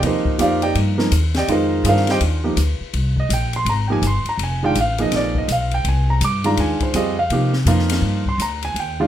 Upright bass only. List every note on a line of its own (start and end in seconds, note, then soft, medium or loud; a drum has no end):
0.02 0.24 D#2 medium
0.25 muted upright bass stroke soft
0.39 0.74 F2 medium
0.75 1.11 G2 medium
1.11 1.47 D#2 medium
1.48 1.83 F2 medium
1.84 2.20 G2 medium
2.20 2.56 D#2 medium
2.56 2.78 D2 medium
2.80 muted upright bass stroke soft
2.94 3.29 C2 medium
3.29 3.64 A#1 medium
3.65 4.01 G#1 medium
4.02 4.24 G1 medium
4.25 muted upright bass stroke soft
4.38 4.74 F1 medium
4.75 5.11 A1 medium
5.11 5.47 A#1 medium
5.48 5.84 B1 medium
5.84 6.20 C2 medium
6.21 6.56 G2 medium
6.57 6.79 D#2 medium
6.80 muted upright bass stroke soft
6.94 7.29 F2 medium
7.30 7.65 C3 medium
7.65 8.01 F2 medium
8.02 8.38 G2 medium
8.38 8.74 D2 medium
8.74 9.07 D#2 medium